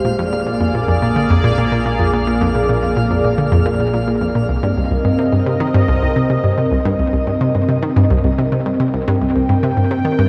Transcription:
Already playing: synth texture F5
0.05 synth drone A#1, synth arpeggio sound A#2, analog synth pad A#3 G#4 D5
0.19 synth arpeggio sound F2
0.33 synth arpeggio sound A#2
0.47 synth arpeggio sound A#2
0.61 synth arpeggio sound F2
0.75 synth arpeggio sound A#2
0.88 synth arpeggio sound F2
1.02 synth arpeggio sound A#2
1.16 synth arpeggio sound D3
1.30 synth arpeggio sound F2
1.44 synth arpeggio sound A#2
1.58 synth arpeggio sound A#2
1.72 synth arpeggio sound A#2
1.86 synth arpeggio sound A#2
1.99 synth arpeggio sound F2
2.13 synth arpeggio sound A#2
2.27 synth arpeggio sound A#2
2.41 synth arpeggio sound F2
2.55 synth arpeggio sound A#2
2.69 synth arpeggio sound A#2
2.83 synth arpeggio sound F2
2.97 synth arpeggio sound A#2
3.11 synth arpeggio sound F2
3.24 synth arpeggio sound A#2
3.38 synth arpeggio sound D3
3.52 synth arpeggio sound F2
3.66 synth arpeggio sound A#2
3.80 synth arpeggio sound A#2
3.94 synth arpeggio sound A#2
4.08 synth arpeggio sound A#2
4.21 synth arpeggio sound F2
4.35 synth arpeggio sound A#2
4.49 synth arpeggio sound C2, analog synth pad C4 A#4 D#5
4.63 synth arpeggio sound G2
4.77 synth arpeggio sound C2
4.91 synth arpeggio sound C2
5.05 synth arpeggio sound G2
5.19 synth arpeggio sound C3
5.33 synth arpeggio sound G2
5.46 synth arpeggio sound C3
5.60 synth arpeggio sound D#3
5.74 synth arpeggio sound G2
5.88 synth arpeggio sound C2
6.02 synth arpeggio sound C2
6.16 synth arpeggio sound C3
6.30 synth arpeggio sound C3
6.44 synth arpeggio sound G2
6.58 synth arpeggio sound C3
6.71 synth arpeggio sound C2
6.85 synth arpeggio sound G2
6.99 synth arpeggio sound C2
7.13 synth arpeggio sound C2
7.27 synth arpeggio sound G2
7.41 synth arpeggio sound C3
7.55 synth arpeggio sound G2
7.69 synth arpeggio sound C3
7.82 synth arpeggio sound D#3
7.96 synth arpeggio sound G2
8.10 synth arpeggio sound C2
8.24 synth arpeggio sound C2
8.38 synth arpeggio sound C3
8.52 synth arpeggio sound C3
8.66 synth arpeggio sound G2
8.80 synth arpeggio sound C3
8.94 synth arpeggio sound C2, analog synth pad G5
9.08 synth arpeggio sound G2
9.22 synth arpeggio sound C2
9.36 synth arpeggio sound C2
9.49 synth arpeggio sound G2
9.63 synth arpeggio sound C3
9.77 synth arpeggio sound G2
9.91 synth arpeggio sound C3
10.05 synth arpeggio sound D#3
10.19 synth arpeggio sound G2

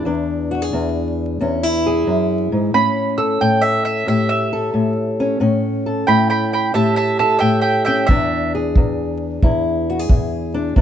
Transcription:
Already playing: steel-string acoustic guitar E3, mandolin B4 D5
0.05 steel-string acoustic guitar E2 D4
0.51 steel-string acoustic guitar F#4
0.62 steel-string acoustic guitar G#4
0.73 steel-string acoustic guitar E2
1.41 steel-string acoustic guitar E2 C#4
1.63 steel-string acoustic guitar E4
1.86 steel-string acoustic guitar G#4
2.07 steel-string acoustic guitar F#2
2.52 steel-string acoustic guitar G#2
2.74 steel-string acoustic guitar A2 C#4, mandolin B5
3.18 steel-string acoustic guitar A4, mandolin E6
3.41 steel-string acoustic guitar A2, mandolin G5
3.62 mandolin E5
3.85 mandolin E5
4.07 steel-string acoustic guitar A2 G4, mandolin E5
4.29 mandolin E5
4.53 steel-string acoustic guitar A4
4.74 steel-string acoustic guitar A2
5.20 steel-string acoustic guitar C#4
5.40 steel-string acoustic guitar A2 C#4
5.86 steel-string acoustic guitar A4
6.07 steel-string acoustic guitar A2, mandolin G5 B5
6.30 mandolin G5 B5
6.53 mandolin G5 B5
6.74 steel-string acoustic guitar A2 G4, mandolin E5 A5
6.96 mandolin E5 A5
7.19 steel-string acoustic guitar A4, mandolin E5 A5
7.39 steel-string acoustic guitar A2, mandolin E5 G5
7.61 mandolin E5 G5
7.85 steel-string acoustic guitar C#4, mandolin E5 G5
8.07 steel-string acoustic guitar E2 D4, mandolin E5, kick
8.55 steel-string acoustic guitar G#4
8.76 steel-string acoustic guitar E2, kick
9.43 steel-string acoustic guitar E2 E4, kick
9.90 steel-string acoustic guitar F#4
9.99 steel-string acoustic guitar G#4
10.09 steel-string acoustic guitar E2, kick
10.54 steel-string acoustic guitar D4
10.76 steel-string acoustic guitar E2 D4, kick

